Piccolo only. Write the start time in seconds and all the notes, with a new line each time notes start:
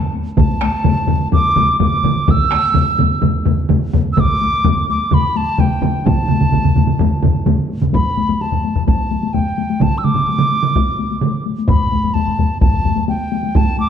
Already playing: A5
0.37 A5
1.33 D6
1.83 D6
2.31 E6
4.13 E6
4.20 D6
4.90 D6
5.14 B5
5.37 A5
5.60 G5
6.06 A5
7.94 B5
8.41 A5
8.87 A5
9.33 G5
9.82 A5
9.98 E6
10.04 D6
11.69 B5
12.14 A5
12.61 A5
13.09 G5
13.57 A5
13.80 D6